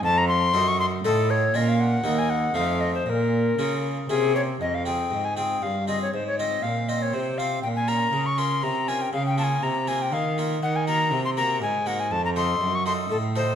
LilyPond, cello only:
\new Staff \with { instrumentName = "Cello" } { \clef bass \time 3/4 \key bes \minor \tempo 4 = 120 f,4 ges,4 a,4 | bes,4 ees,4 f,4 | bes,4 des4 c4 | \key bes \dorian f,4 aes,4 g,4 |
aes,4 bes,4 c4 | bes,4 des4 c4 | des4 c4 ees4 | \key ees \dorian ees4 c4 aes,4 |
f,4 ges,4 a,4 | }